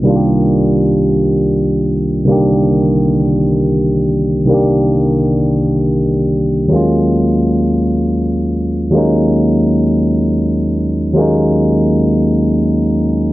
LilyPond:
\new Staff \with { instrumentName = "Tine electric piano" } { \time 6/8 \key c \minor \tempo 4. = 54 <c, ees g bes d' f' g'>2. | <c, d ees g bes d' g'>2. | <c, ees g bes d' g'>2. | <ees, ges aes bes des' f'>2. |
<ees, ges aes bes des' ees'>2. | <ees, ges aes bes des' ees'>2. | }